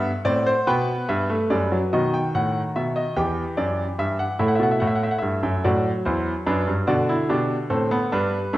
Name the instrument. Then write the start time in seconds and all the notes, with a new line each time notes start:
grand piano
Already playing: F#5
0.25 A2 C4 D5
0.46 C5
0.67 B2 B3 B4 G5
1.09 G2 E5
1.30 A3
1.50 F#2 G3 D5
1.72 F#3
1.93 B2 D#3 F#4 D#5
2.14 G5
2.35 A2 F#5
2.76 B2 E5
2.96 D#5
3.16 E2 E3 G4 G5
3.57 F#2 D5
3.99 G2 E5
4.19 F#5
4.39 A2 A3 E4 E5
4.48 F#5
4.55 E5
4.59 B2 F#5
4.71 E5
4.80 A2 F#5
4.87 E5
4.95 F#5
5.03 E5
5.11 F#5
5.18 G2 E5
5.43 F#2
5.64 A2 F#3 F#4 D5
6.05 E2 E4 C5
6.46 F#2 D4 B4
6.67 G2
6.87 B2 D3 F#4 D5
7.09 E4
7.29 B2 D4 G4
7.70 A2 C4 A4
7.91 B3
8.12 G2 G3 D4 B4
8.53 F#2 A3